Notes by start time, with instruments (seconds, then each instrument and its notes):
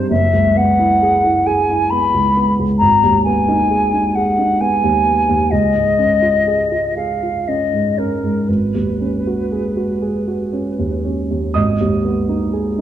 Already playing: grand piano G2 C4 D#4 G#4
0.10 grand piano F#1, flute E5
0.33 grand piano C#2
0.56 grand piano B3, flute F#5
0.79 grand piano E4
1.02 grand piano G#4
1.24 grand piano E4
1.46 grand piano G#4, flute G#5
1.70 grand piano E4
1.90 grand piano B3, flute B5
2.14 grand piano C#2
2.37 grand piano B3
2.59 grand piano C#2
2.78 grand piano G#1, flute A#5
3.04 grand piano D#2
3.24 grand piano B3, flute G#5
3.48 grand piano D#4
3.70 grand piano G#4
3.94 grand piano D#4
4.15 grand piano G#4, flute F#5
4.39 grand piano D#4
4.60 grand piano B3, flute G#5
4.84 grand piano D#2
5.07 grand piano B3
5.29 grand piano D#2
5.51 grand piano C#2, flute D#5
5.75 grand piano G#2
5.98 grand piano C#4
6.22 grand piano F4
6.47 grand piano G#4
6.71 grand piano F4
6.96 grand piano G#4, flute F5
7.23 grand piano F4
7.48 grand piano C#4, flute D#5
7.73 grand piano G#2
7.98 grand piano C#4, flute A#4
8.24 grand piano G#2
8.48 grand piano G#1, flute B4
8.75 grand piano D#2
9.01 grand piano C#4
9.27 grand piano F#4
9.52 grand piano G#4
9.77 grand piano F#4
10.02 grand piano G#4
10.28 grand piano F#4
10.53 grand piano C#4
10.79 grand piano D#2
11.05 grand piano C#4
11.31 grand piano D#2
11.54 grand piano G#1 D#5 D#6
11.81 grand piano D#2
12.05 grand piano B3
12.29 grand piano D#4
12.53 grand piano G#4